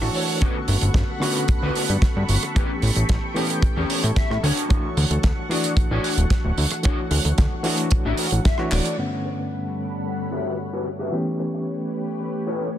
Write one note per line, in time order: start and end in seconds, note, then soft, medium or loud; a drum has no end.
0.00 0.10 A1 medium
0.00 0.38 E3 medium
0.00 0.38 A3 medium
0.00 0.39 D4 medium
0.00 0.39 F#4 medium
0.00 8.94 A4 medium
0.00 0.38 C#5 medium
0.00 0.38 F#5 medium
0.00 0.13 A5 medium
0.00 8.94 C#6 medium
0.00 0.39 E6 medium
0.00 muted clean electric guitar stroke soft
0.00 cross-stick medium
0.14 0.40 C#5 medium
0.14 open hi-hat loud
0.29 muted clean electric guitar stroke soft
0.40 1.18 D3 medium
0.40 1.18 A3 medium
0.40 1.19 B3 medium
0.40 0.55 C#4 loud
0.40 1.19 C#4 medium
0.40 0.56 F#4 loud
0.40 1.19 F#4 medium
0.40 0.56 A4 loud
0.40 0.56 B4 loud
0.40 2.54 F#5 medium
0.40 4.39 B5 medium
0.40 kick loud
0.40 closed hi-hat medium
0.68 0.77 G1 loud
0.68 muted clean electric guitar stroke soft
0.68 open hi-hat loud
0.81 0.90 G1 medium
0.81 closed hi-hat medium
0.94 1.03 G1 loud
0.94 muted clean electric guitar stroke medium
0.94 kick loud
0.94 snare loud
0.94 closed hi-hat medium
1.09 muted clean electric guitar stroke soft
1.20 2.52 D3 medium
1.20 2.52 A3 medium
1.20 2.52 B3 medium
1.20 2.53 C#4 medium
1.20 1.42 C#4 medium
1.20 1.42 F#4 medium
1.20 2.53 F#4 loud
1.20 1.42 A4 medium
1.20 1.42 B4 medium
1.20 cross-stick medium
1.20 open hi-hat loud
1.37 closed hi-hat medium
1.48 1.60 D2 soft
1.48 kick loud
1.48 closed hi-hat medium
1.62 1.70 D2 medium
1.62 1.82 C#4 loud
1.62 1.82 F#4 loud
1.62 1.83 A4 loud
1.62 1.83 B4 loud
1.75 open hi-hat loud
1.89 1.97 G2 medium
1.89 closed hi-hat medium
2.02 muted clean electric guitar stroke medium
2.02 kick medium
2.02 snare loud
2.02 closed hi-hat medium
2.16 2.24 G2 medium
2.16 muted clean electric guitar stroke soft
2.29 2.37 G1 medium
2.29 open hi-hat loud
2.43 muted clean electric guitar stroke soft
2.43 cross-stick medium
2.43 closed hi-hat medium
2.55 3.33 E3 medium
2.55 3.33 A3 medium
2.55 3.33 B3 medium
2.55 2.70 C#4 loud
2.55 3.33 C#4 medium
2.55 2.70 G4 loud
2.55 3.33 G4 medium
2.55 2.70 B4 loud
2.55 4.41 G5 medium
2.55 kick loud
2.55 closed hi-hat medium
2.82 2.91 A1 loud
2.82 muted clean electric guitar stroke soft
2.82 open hi-hat loud
2.96 3.04 A1 medium
2.96 closed hi-hat medium
3.09 3.18 A1 loud
3.09 muted clean electric guitar stroke medium
3.09 kick medium
3.09 snare loud
3.09 closed hi-hat medium
3.23 muted clean electric guitar stroke soft
3.35 4.41 E3 medium
3.35 4.41 A3 medium
3.35 4.41 B3 medium
3.35 3.56 C#4 medium
3.35 4.42 C#4 medium
3.35 3.56 G4 medium
3.35 4.42 G4 loud
3.35 3.57 C#5 medium
3.35 open hi-hat loud
3.50 closed hi-hat medium
3.62 kick loud
3.62 closed hi-hat medium
3.76 3.85 E2 medium
3.76 3.97 C#4 loud
3.76 3.97 G4 loud
3.76 3.89 C#5 loud
3.90 4.15 C#5 medium
3.90 open hi-hat loud
4.04 4.11 A2 medium
4.04 closed hi-hat medium
4.16 4.41 E5 medium
4.16 muted clean electric guitar stroke medium
4.16 kick loud
4.16 snare loud
4.16 closed hi-hat medium
4.30 4.38 A2 medium
4.30 muted clean electric guitar stroke soft
4.30 cross-stick medium
4.43 4.52 D2 medium
4.43 4.87 D4 medium
4.43 4.87 F#4 medium
4.43 4.87 C#5 loud
4.43 8.95 F#5 medium
4.43 4.68 F#5 medium
4.43 open hi-hat loud
4.57 closed hi-hat medium
4.68 5.46 E3 medium
4.68 5.47 A3 medium
4.68 5.47 D4 medium
4.68 5.48 F#4 medium
4.68 5.47 C#5 medium
4.68 kick loud
4.68 closed hi-hat medium
4.97 5.05 D2 loud
4.97 muted clean electric guitar stroke soft
4.97 open hi-hat medium
5.11 5.18 D2 medium
5.11 closed hi-hat medium
5.23 5.32 D2 loud
5.23 muted clean electric guitar stroke medium
5.23 kick medium
5.23 snare loud
5.23 closed hi-hat medium
5.38 muted clean electric guitar stroke soft
5.49 6.81 E3 medium
5.49 6.81 A3 medium
5.49 6.81 D4 medium
5.49 5.71 D4 medium
5.49 6.82 F#4 loud
5.49 5.71 F#4 medium
5.49 5.71 D5 medium
5.49 cross-stick medium
5.49 open hi-hat medium
5.64 closed hi-hat medium
5.77 5.88 A1 soft
5.77 kick loud
5.77 closed hi-hat medium
5.91 5.99 A1 medium
5.91 6.11 D4 loud
5.91 6.11 F#4 loud
5.91 6.11 C#5 loud
6.04 open hi-hat medium
6.17 6.25 D1 medium
6.17 closed hi-hat medium
6.30 muted clean electric guitar stroke medium
6.30 kick medium
6.30 snare loud
6.30 closed hi-hat medium
6.45 6.52 D1 medium
6.45 muted clean electric guitar stroke soft
6.58 6.66 D2 medium
6.58 open hi-hat medium
6.70 muted clean electric guitar stroke soft
6.70 cross-stick medium
6.70 closed hi-hat medium
6.83 7.61 E3 medium
6.83 7.61 A3 medium
6.83 6.98 D4 loud
6.83 7.62 D4 medium
6.83 6.98 F#4 loud
6.83 7.62 F#4 medium
6.83 7.62 C#5 medium
6.83 6.98 C#5 loud
6.83 kick loud
6.83 closed hi-hat medium
7.11 7.19 D2 loud
7.11 muted clean electric guitar stroke soft
7.11 open hi-hat loud
7.25 7.33 D2 medium
7.25 closed hi-hat medium
7.38 7.46 D2 loud
7.38 muted clean electric guitar stroke medium
7.38 kick loud
7.38 snare loud
7.38 closed hi-hat medium
7.52 muted clean electric guitar stroke soft
7.63 8.55 E3 loud
7.63 8.56 A3 medium
7.63 8.56 D4 medium
7.63 7.85 D4 medium
7.63 8.57 F#4 loud
7.63 7.85 F#4 medium
7.63 7.85 A4 loud
7.63 8.56 C#5 medium
7.63 open hi-hat loud
7.78 closed hi-hat medium
7.91 kick loud
7.91 closed hi-hat medium
8.05 8.13 A1 medium
8.05 8.25 D4 loud
8.05 8.25 F#4 loud
8.05 8.18 E5 loud
8.17 8.43 F#5 medium
8.17 open hi-hat loud
8.31 8.40 A1 medium
8.31 closed hi-hat medium
8.45 8.70 E5 medium
8.45 muted clean electric guitar stroke medium
8.45 kick loud
8.45 snare loud
8.45 closed hi-hat medium
8.58 8.95 E3 medium
8.58 8.95 A3 medium
8.58 8.96 D4 medium
8.58 8.96 F#4 loud
8.58 8.95 C#5 medium
8.58 muted clean electric guitar stroke soft
8.58 cross-stick medium
8.71 8.80 D1 loud
8.71 8.97 D5 medium
8.71 clap medium
8.71 open hi-hat loud
8.85 muted clean electric guitar stroke soft
8.85 closed hi-hat medium
8.98 11.09 G2 medium
8.98 11.10 D3 medium
8.98 11.10 G3 medium
8.98 11.10 A3 medium
8.98 11.10 B3 medium
8.98 11.10 C#4 medium
8.98 11.10 A4 medium
8.98 12.78 C#5 medium
8.98 11.10 F#5 medium
8.98 11.10 B5 medium
9.25 muted clean electric guitar stroke loud
9.39 muted clean electric guitar stroke soft
10.06 muted clean electric guitar stroke soft
10.32 10.53 F#4 medium
10.32 10.53 G4 medium
10.32 10.53 A4 medium
10.32 10.53 B4 medium
10.32 10.53 E5 loud
10.73 10.86 F#4 medium
10.73 10.86 G4 medium
10.73 10.86 A4 medium
10.73 10.86 B4 medium
10.73 10.86 C#5 medium
10.99 11.13 F#4 medium
10.99 11.13 G4 medium
10.99 11.13 A4 medium
10.99 11.13 B4 medium
10.99 11.13 E5 medium
11.12 12.78 E3 medium
11.12 12.78 A3 medium
11.12 12.78 B3 medium
11.12 12.78 C#4 medium
11.12 12.78 G4 medium
11.12 12.78 B4 medium
11.39 muted clean electric guitar stroke loud
11.54 muted clean electric guitar stroke soft
12.20 muted clean electric guitar stroke soft
12.47 12.67 G4 loud
12.47 12.67 A4 medium
12.47 12.67 B4 medium
12.47 12.67 C#5 loud